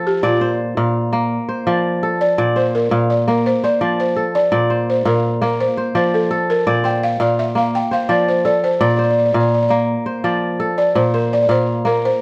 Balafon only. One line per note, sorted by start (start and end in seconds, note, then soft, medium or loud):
0.07 0.25 G4 medium
0.24 1.63 F4 medium
2.21 2.57 D5 medium
2.57 2.75 C5 medium
2.75 3.11 A#4 medium
3.10 3.18 D5 medium
3.28 3.46 A#4 medium
3.46 3.64 C5 medium
3.64 4.00 D5 medium
4.00 4.33 C5 medium
4.35 4.85 D5 medium
4.90 5.07 C5 medium
5.07 5.42 A#4 medium
5.43 5.59 A#4 medium
5.60 5.95 C5 medium
5.96 6.12 C5 medium
6.14 6.50 A4 medium
6.50 6.83 A#4 medium
6.85 7.03 G5 medium
7.03 7.20 F5 medium
7.21 7.39 D5 medium
7.39 7.57 E5 medium
7.58 7.75 F5 medium
7.75 7.93 G5 medium
7.93 8.11 F5 medium
8.11 8.29 D5 medium
8.28 8.45 C5 medium
8.45 8.64 D5 medium
8.64 8.82 C5 medium
8.81 8.88 D5 medium
8.90 8.96 D5 medium
8.97 9.03 D5 medium
9.04 9.09 D5 soft
9.10 9.17 D5 medium
9.18 9.24 D5 soft
9.26 9.32 D5 medium
9.33 9.39 D5 soft
9.40 9.46 D5 medium
9.47 9.53 D5 soft
9.54 9.61 D5 medium
9.63 9.68 D5 medium
9.69 9.76 D5 medium
10.78 10.96 D5 medium
10.96 11.14 C5 medium
11.14 11.32 A#4 medium
11.33 11.41 D5 medium
11.43 11.50 D5 medium
11.51 11.87 C5 loud
11.87 12.03 A#4 medium
12.05 12.22 C5 medium